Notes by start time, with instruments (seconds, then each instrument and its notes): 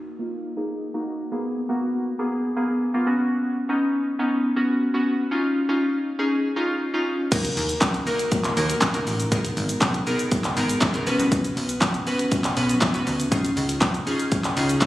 0.19 synth keys A#3 D#4 F4
0.57 synth keys A#3 D#4 G#4
0.94 synth keys A#3 D#4 F#4
1.32 synth keys A#3 B3 G#4
1.69 synth keys A#3 B3 F#4
2.19 synth keys A#3 B3 G#4
2.56 synth keys A#3 B3 G#4
2.94 synth keys A#3 B3 F4
3.06 synth keys B3 C#4 F#4
3.69 synth keys B3 C#4 D#4
4.19 synth keys B3 C#4 D#4
4.56 synth keys B3 C#4 F#4
4.94 synth keys B3 C#4 F#4
5.31 synth keys C#4 D#4 F4
5.69 synth keys C#4 D#4 F4
6.19 synth keys C#4 D#4 G#4
6.56 synth keys C#4 D#4 F4
6.94 synth keys C#4 D#4 F4
7.31 analog synth bass D#2, synth keys A#3 D#4 F#4 A#4, kick, closed hi-hat, crash, shaker
7.45 closed hi-hat, shaker
7.57 analog synth bass D#2, open hi-hat, shaker
7.69 closed hi-hat, shaker
7.81 analog synth bass C#2, kick, snare, clap, closed hi-hat, shaker
7.94 closed hi-hat, shaker
8.06 synth keys A#3 D#4 F#4 A#4, open hi-hat, shaker
8.19 closed hi-hat, shaker
8.32 kick, closed hi-hat, shaker
8.44 clap, closed hi-hat, shaker
8.57 analog synth bass D#2, synth keys A#3 D#4 F#4 A#4, open hi-hat, shaker
8.70 closed hi-hat, shaker
8.81 kick, snare, clap, closed hi-hat, shaker
8.94 synth keys A#3 D#4 F#4 A#4, closed hi-hat, shaker
9.07 analog synth bass A1, open hi-hat, shaker
9.20 closed hi-hat, shaker
9.31 analog synth bass G#1, synth keys B3 D#4 G#4 A#4, kick, closed hi-hat, shaker
9.45 closed hi-hat, shaker
9.57 analog synth bass G#1, open hi-hat, shaker
9.69 closed hi-hat, shaker
9.81 analog synth bass B1, kick, snare, clap, closed hi-hat, shaker
9.94 closed hi-hat, shaker
10.07 synth keys B3 D#4 G#4 A#4, open hi-hat, shaker
10.19 closed hi-hat, shaker
10.32 kick, closed hi-hat, shaker
10.44 clap, closed hi-hat, shaker
10.57 analog synth bass G#1, synth keys B3 D#4 G#4 A#4, open hi-hat, shaker
10.69 closed hi-hat, shaker
10.81 analog synth bass G#2, kick, snare, clap, closed hi-hat, shaker
10.94 synth keys B3 D#4 G#4 A#4, closed hi-hat, shaker
11.07 analog synth bass B1, synth keys B3 C#4 F#4 B4, open hi-hat, shaker
11.19 analog synth bass C2, closed hi-hat, shaker
11.32 analog synth bass B1, kick, closed hi-hat, shaker
11.45 closed hi-hat, shaker
11.57 analog synth bass B1, open hi-hat, shaker
11.69 closed hi-hat, shaker
11.81 analog synth bass A#1, kick, snare, clap, closed hi-hat, shaker
11.94 closed hi-hat, shaker
12.07 synth keys B3 C#4 F#4 B4, open hi-hat, shaker
12.19 closed hi-hat, shaker
12.32 kick, closed hi-hat, shaker
12.44 clap, closed hi-hat, shaker
12.57 analog synth bass B1, synth keys B3 C#4 F#4 B4, open hi-hat, shaker
12.69 closed hi-hat, shaker
12.81 kick, snare, clap, closed hi-hat, shaker
12.94 synth keys B3 C#4 F#4 B4, closed hi-hat, shaker
13.07 analog synth bass D2, open hi-hat, shaker
13.20 closed hi-hat, shaker
13.31 analog synth bass C#2, synth keys C#4 D#4 F4 G#4, kick, closed hi-hat, shaker
13.45 closed hi-hat, shaker
13.57 analog synth bass C#2, open hi-hat, shaker
13.69 closed hi-hat, shaker
13.81 analog synth bass F2, kick, snare, clap, closed hi-hat, shaker
13.94 closed hi-hat, shaker
14.07 synth keys C#4 D#4 F4 G#4, open hi-hat, shaker
14.19 closed hi-hat, shaker
14.32 kick, closed hi-hat, shaker
14.44 clap, closed hi-hat, shaker
14.56 analog synth bass C#2, synth keys C#4 D#4 F4 G#4, open hi-hat, shaker
14.69 closed hi-hat, shaker
14.81 analog synth bass C#3, kick, snare, clap, closed hi-hat, shaker